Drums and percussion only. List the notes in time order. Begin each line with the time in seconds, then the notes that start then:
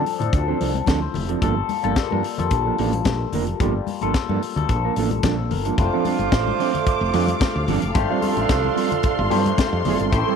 0.06 open hi-hat
0.20 closed hi-hat, low conga
0.33 kick, closed hi-hat, muted conga
0.61 open hi-hat, muted conga
0.74 closed hi-hat, high conga
0.86 kick, snare, closed hi-hat, muted conga, high conga
1.14 open hi-hat, muted conga, low conga
1.29 closed hi-hat
1.42 kick, closed hi-hat
1.69 open hi-hat, high conga
1.84 closed hi-hat, high conga
1.96 kick, snare, closed hi-hat
2.11 high conga
2.23 open hi-hat, muted conga
2.38 closed hi-hat, low conga
2.51 kick, closed hi-hat
2.78 open hi-hat
2.92 closed hi-hat, high conga
3.05 kick, snare, closed hi-hat, muted conga, high conga
3.32 open hi-hat, muted conga, low conga
3.47 closed hi-hat
3.60 kick, closed hi-hat
3.87 open hi-hat, muted conga, high conga
4.01 closed hi-hat, high conga
4.14 kick, snare, closed hi-hat, muted conga
4.29 high conga
4.42 open hi-hat
4.56 closed hi-hat, low conga
4.69 kick, closed hi-hat, muted conga
4.96 open hi-hat
5.11 closed hi-hat, high conga
5.23 kick, snare, closed hi-hat, muted conga, high conga
5.51 open hi-hat, low conga
5.65 closed hi-hat
5.78 kick, closed hi-hat, muted conga
6.05 open hi-hat, muted conga, high conga
6.19 closed hi-hat, high conga
6.32 kick, snare, closed hi-hat
6.47 high conga
6.60 open hi-hat
6.75 closed hi-hat, low conga
6.86 kick, closed hi-hat, muted conga
7.13 open hi-hat, muted conga
7.28 closed hi-hat, high conga
7.40 kick, snare, closed hi-hat, high conga
7.68 open hi-hat, muted conga, low conga
7.82 closed hi-hat
7.95 kick, closed hi-hat, muted conga
8.22 open hi-hat, high conga
8.37 closed hi-hat, high conga
8.49 kick, snare, closed hi-hat
8.64 high conga
8.76 open hi-hat, muted conga
8.92 closed hi-hat, low conga
9.03 kick, closed hi-hat, muted conga
9.31 open hi-hat, muted conga
9.46 closed hi-hat, high conga
9.58 kick, snare, closed hi-hat, muted conga, high conga
9.85 open hi-hat, muted conga, low conga
9.99 closed hi-hat
10.12 kick, closed hi-hat, muted conga